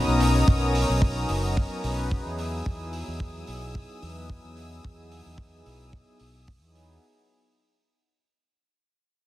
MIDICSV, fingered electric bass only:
0, 0, Header, 1, 2, 480
1, 0, Start_track
1, 0, Tempo, 545455
1, 416, Time_signature, 4, 2, 24, 8
1, 8151, End_track
2, 0, Start_track
2, 0, Title_t, "Fingered electric bass"
2, 0, Program_c, 0, 33
2, 64, Note_on_c, 0, 35, 84
2, 371, Note_off_c, 0, 35, 0
2, 421, Note_on_c, 0, 35, 92
2, 735, Note_off_c, 0, 35, 0
2, 785, Note_on_c, 0, 35, 76
2, 1092, Note_off_c, 0, 35, 0
2, 1137, Note_on_c, 0, 30, 86
2, 1452, Note_off_c, 0, 30, 0
2, 1618, Note_on_c, 0, 35, 92
2, 1933, Note_off_c, 0, 35, 0
2, 1984, Note_on_c, 0, 40, 80
2, 2291, Note_off_c, 0, 40, 0
2, 2343, Note_on_c, 0, 40, 90
2, 2655, Note_off_c, 0, 40, 0
2, 2707, Note_on_c, 0, 40, 75
2, 3012, Note_off_c, 0, 40, 0
2, 3060, Note_on_c, 0, 35, 82
2, 3374, Note_off_c, 0, 35, 0
2, 3541, Note_on_c, 0, 40, 90
2, 3854, Note_off_c, 0, 40, 0
2, 3909, Note_on_c, 0, 40, 80
2, 4214, Note_off_c, 0, 40, 0
2, 4264, Note_on_c, 0, 40, 89
2, 4576, Note_off_c, 0, 40, 0
2, 4629, Note_on_c, 0, 40, 70
2, 4933, Note_off_c, 0, 40, 0
2, 4980, Note_on_c, 0, 35, 83
2, 5294, Note_off_c, 0, 35, 0
2, 5458, Note_on_c, 0, 35, 79
2, 5826, Note_off_c, 0, 35, 0
2, 5826, Note_on_c, 0, 40, 85
2, 6132, Note_off_c, 0, 40, 0
2, 8151, End_track
0, 0, End_of_file